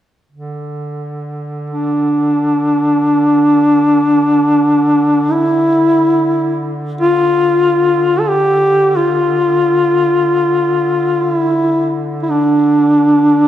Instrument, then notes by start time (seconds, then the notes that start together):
duduk
0.31 D3
1.70 D4
5.32 E4
7.01 F4
8.20 A4
8.29 G4
8.96 F4
11.22 F4
11.34 E4
12.22 E4
12.30 D4